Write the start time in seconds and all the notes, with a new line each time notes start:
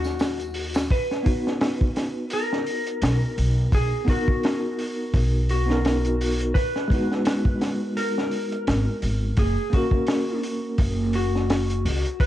Already playing: D#2 F#4
0.04 snare, tambourine
0.19 snare, open hi-hat, tambourine
0.39 closed hi-hat, tambourine
0.54 open hi-hat
0.74 snare, open hi-hat, tambourine
0.90 B4, kick, open hi-hat
1.11 snare
1.23 B3 D#4 F#4, kick, open hi-hat
1.47 snare
1.61 snare, open hi-hat
1.81 kick
1.96 snare, open hi-hat
2.30 A#4, open hi-hat
2.53 snare
2.66 open hi-hat
2.86 closed hi-hat
3.02 B1, snare, open hi-hat
3.38 B1, open hi-hat
3.72 B1 G#4, kick, open hi-hat
4.05 B3 D#4, kick, open hi-hat
4.09 F#4 A#4
4.28 kick
4.43 snare, open hi-hat
4.79 open hi-hat
5.14 B1, kick, open hi-hat
5.49 F#4, open hi-hat
5.66 B3 D#4 F#4, snare
5.72 A#4
5.85 snare, open hi-hat
6.05 closed hi-hat
6.21 open hi-hat
6.40 closed hi-hat
6.54 B4, kick, open hi-hat
6.76 snare
6.88 G#3 B3, kick, open hi-hat
6.92 D#4 F#4
7.12 snare
7.25 snare, open hi-hat
7.45 kick
7.61 snare, open hi-hat
7.97 A#4, open hi-hat
8.18 snare
8.31 open hi-hat
8.52 closed hi-hat
8.67 G#1, snare, open hi-hat
9.02 G#1, open hi-hat
9.37 F#1 G#4, kick, open hi-hat
9.70 A#3 C#4 F#4, kick, open hi-hat
9.74 F#4 A#4
9.91 kick
10.06 snare, open hi-hat
10.43 open hi-hat
10.78 F#1, kick, open hi-hat
11.13 F#4, open hi-hat
11.36 snare
11.50 snare, open hi-hat
11.70 closed hi-hat
11.85 C#2, open hi-hat
12.05 closed hi-hat
12.20 B4, kick, open hi-hat